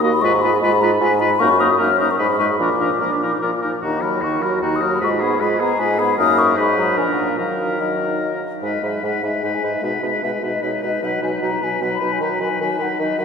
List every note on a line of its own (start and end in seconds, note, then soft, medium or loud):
0.00 0.19 D#2 medium
0.00 0.12 A#3 medium
0.00 0.12 F#4 medium
0.00 0.13 D#5 medium
0.13 0.23 B5 medium
0.21 0.58 G#2 medium
0.21 0.31 G#3 medium
0.21 0.32 F4 medium
0.21 0.33 B4 medium
0.21 0.43 C#6 medium
0.41 0.51 G#3 medium
0.41 0.52 F4 medium
0.41 0.53 B4 medium
0.41 0.60 B5 medium
0.61 0.96 G#2 medium
0.61 0.70 G#3 medium
0.61 0.71 F4 medium
0.61 0.72 B4 medium
0.61 0.82 B5 loud
0.81 0.89 G#3 medium
0.81 0.91 F4 medium
0.81 0.91 B4 medium
0.81 0.99 A#5 medium
1.00 1.35 G#2 medium
1.00 1.09 G#3 medium
1.00 1.09 F4 medium
1.00 1.11 B4 medium
1.00 1.21 G#5 medium
1.19 1.28 G#3 medium
1.19 1.29 F4 medium
1.19 1.29 B4 medium
1.19 1.41 B5 medium
1.39 1.75 F#2 medium
1.39 1.48 A#3 medium
1.39 1.50 D#4 medium
1.39 1.49 A#4 medium
1.39 1.62 C#6 loud
1.60 1.69 A#3 medium
1.60 1.69 D#4 medium
1.60 1.68 A#4 medium
1.60 1.79 D#6 medium
1.78 2.14 F#2 medium
1.78 1.88 A#3 medium
1.78 1.89 D#4 medium
1.78 1.87 A#4 medium
1.78 1.99 F6 medium
1.99 2.08 A#3 soft
1.99 2.10 D#4 soft
1.99 2.09 A#4 medium
1.99 2.12 D#6 medium
2.11 2.19 C#6 medium
2.19 2.55 G#2 medium
2.19 2.28 G#3 medium
2.19 2.29 D#4 soft
2.19 2.28 B4 medium
2.19 2.38 B5 medium
2.39 2.48 G#3 soft
2.39 2.49 D#4 soft
2.39 2.48 B4 soft
2.39 2.45 C#6 medium
2.59 2.96 A#2 medium
2.59 2.69 F3 soft
2.59 2.70 D4 soft
2.59 2.70 A#4 soft
2.59 3.60 D6 medium
2.80 2.90 F3 soft
2.80 2.91 D4 soft
2.80 2.90 A#4 soft
3.00 3.37 A#2 soft
3.00 3.10 F3 soft
3.00 3.24 D4 medium
3.00 3.11 A#4 soft
3.22 3.31 F3 soft
3.22 3.43 D#4 soft
3.22 3.31 A#4 soft
3.42 3.78 A#2 soft
3.42 3.52 F3 soft
3.42 3.52 F4 medium
3.42 3.51 A#4 soft
3.61 3.73 F3 soft
3.61 3.72 D#4 soft
3.61 3.71 A#4 soft
3.81 4.18 D#2 medium
3.81 4.05 D#3 soft
3.81 4.05 D#4 soft
3.81 4.03 F#4 soft
3.81 4.04 A#5 medium
4.01 4.24 F#3 soft
4.01 4.25 F#4 soft
4.01 4.23 A#4 soft
4.01 4.25 B5 medium
4.21 4.57 D#2 soft
4.21 4.44 D#3 soft
4.21 4.44 D#4 soft
4.21 4.44 F#4 soft
4.21 4.43 C#6 medium
4.42 4.62 F#3 soft
4.42 4.61 F#4 soft
4.42 4.60 A#4 soft
4.42 4.50 B5 medium
4.61 4.97 D#2 medium
4.61 4.84 D#3 soft
4.61 4.83 D#4 soft
4.61 4.83 F#4 soft
4.61 4.77 A#5 medium
4.76 4.93 D#6 medium
4.81 5.00 F#3 soft
4.81 5.01 F#4 soft
4.81 5.00 A#4 soft
4.94 4.98 B5 medium
5.01 5.36 G#2 medium
5.01 5.24 G#3 soft
5.01 5.23 F4 soft
5.01 5.21 B4 soft
5.01 5.09 C#6 medium
5.20 5.42 B3 soft
5.20 5.42 G#4 soft
5.20 5.43 G#4 soft
5.20 5.40 B5 medium
5.40 5.75 G#2 medium
5.40 5.62 G#3 soft
5.40 5.61 F4 medium
5.40 5.61 B4 soft
5.40 5.47 B5 medium
5.60 5.79 B3 soft
5.60 5.79 G#4 soft
5.60 5.81 A#5 medium
5.79 6.14 G#2 medium
5.79 6.01 G#3 soft
5.79 5.99 F4 medium
5.79 6.00 B4 medium
5.79 6.01 G#5 medium
5.98 6.18 B3 soft
5.98 6.17 G#4 medium
5.98 6.17 G#4 soft
5.98 6.18 B5 medium
6.18 6.59 F#2 medium
6.18 6.55 A#3 medium
6.18 6.54 D#4 medium
6.18 6.58 A#4 medium
6.18 6.40 D#6 loud
6.38 6.57 C#6 medium
6.56 6.96 G#2 medium
6.56 6.80 G#3 medium
6.56 6.99 D#4 medium
6.56 7.00 B4 medium
6.56 6.77 B5 medium
6.78 6.99 F#3 soft
6.78 6.97 A#5 medium
6.97 7.40 A#2 soft
6.97 7.38 F3 soft
6.97 7.39 D4 medium
6.97 7.37 A#4 soft
6.97 7.03 G#5 medium
7.10 7.31 F#5 soft
7.29 7.37 F5 soft
7.37 8.43 D#3 soft
7.37 7.80 F#3 soft
7.37 7.80 D#4 soft
7.37 7.79 A#4 soft
7.37 7.82 F5 medium
7.80 8.42 F#3 soft
7.80 8.42 D#4 soft
7.80 8.42 A#4 soft
7.80 8.35 D#5 soft
8.62 8.72 G#2 soft
8.62 8.82 G#3 soft
8.62 8.82 D#4 soft
8.62 8.83 B4 soft
8.62 8.87 D#5 medium
8.82 8.92 G#2 soft
8.82 9.02 G#3 soft
8.82 9.03 D#4 soft
8.82 9.04 B4 soft
8.82 9.05 E5 medium
9.03 9.12 G#2 soft
9.03 9.23 G#3 soft
9.03 9.24 D#4 soft
9.03 9.24 B4 soft
9.03 9.25 F#5 medium
9.23 9.32 G#2 soft
9.23 9.43 G#3 soft
9.23 9.43 D#4 soft
9.23 9.44 B4 soft
9.23 9.45 E5 soft
9.43 9.52 G#2 soft
9.43 9.62 G#3 soft
9.43 9.64 D#4 soft
9.43 9.63 B4 soft
9.43 9.56 D#5 medium
9.54 9.74 G#5 medium
9.63 9.72 G#2 soft
9.63 9.81 G#3 soft
9.63 9.82 D#4 soft
9.63 9.83 B4 soft
9.75 9.85 E5 soft
9.81 9.92 B2 soft
9.81 10.01 G#3 soft
9.81 10.03 D#4 soft
9.81 10.02 B4 soft
9.81 10.03 F#5 medium
10.02 10.12 B2 soft
10.02 10.22 G#3 soft
10.02 10.23 D#4 soft
10.02 10.23 B4 soft
10.02 10.09 E5 soft
10.23 10.32 B2 soft
10.23 10.42 G#3 soft
10.23 10.43 D#4 soft
10.23 10.43 B4 soft
10.23 10.30 E5 medium
10.42 10.52 B2 soft
10.42 10.62 G#3 soft
10.42 10.63 D#4 soft
10.42 10.62 B4 soft
10.42 10.65 D#5 medium
10.63 10.72 B2 soft
10.63 10.82 G#3 soft
10.63 10.83 D#4 soft
10.63 10.82 B4 soft
10.63 10.86 C#5 medium
10.82 10.92 B2 soft
10.82 11.02 G#3 soft
10.82 11.02 D#4 soft
10.82 11.02 B4 soft
10.82 11.06 D#5 medium
11.02 11.12 B2 soft
11.02 11.21 F#3 soft
11.02 11.21 D#4 soft
11.02 11.21 B4 soft
11.02 11.23 F#5 medium
11.22 11.31 B2 soft
11.22 11.41 F#3 soft
11.22 11.42 D#4 soft
11.22 11.41 B4 soft
11.22 11.29 G#5 medium
11.42 11.51 B2 soft
11.42 11.59 F#3 soft
11.42 11.62 D#4 soft
11.42 11.61 B4 soft
11.42 11.65 A#5 medium
11.60 11.71 B2 soft
11.60 11.80 F#3 soft
11.60 11.82 D#4 soft
11.60 11.81 B4 soft
11.60 11.84 G#5 medium
11.81 11.90 B2 soft
11.81 12.00 F#3 soft
11.81 12.01 D#4 soft
11.81 11.99 B4 soft
11.81 11.92 F#5 medium
11.94 12.14 B5 medium
12.00 12.10 B2 soft
12.00 12.20 F#3 soft
12.00 12.21 D#4 soft
12.00 12.20 B4 soft
12.12 12.23 G#5 medium
12.20 12.29 D#3 medium
12.20 12.40 F#3 soft
12.20 12.41 D#4 soft
12.20 12.40 B4 soft
12.20 12.41 A#5 medium
12.40 12.49 D#3 soft
12.40 12.59 F#3 soft
12.40 12.60 D#4 soft
12.40 12.60 B4 soft
12.40 12.60 G#5 medium
12.60 12.69 D#3 soft
12.60 12.79 F#3 soft
12.60 12.80 D#4 soft
12.60 12.78 B4 soft
12.60 12.83 G#5 medium
12.79 12.88 D#3 soft
12.79 12.99 F#3 soft
12.79 13.00 D#4 soft
12.79 12.98 B4 soft
12.79 13.03 F#5 medium
12.99 13.08 D#3 medium
12.99 13.17 F#3 soft
12.99 13.19 D#4 medium
12.99 13.18 B4 medium
12.99 13.22 D#5 medium
13.18 13.25 D#3 soft
13.18 13.25 F#3 soft
13.18 13.25 D#4 soft
13.18 13.25 B4 soft
13.18 13.25 F#5 medium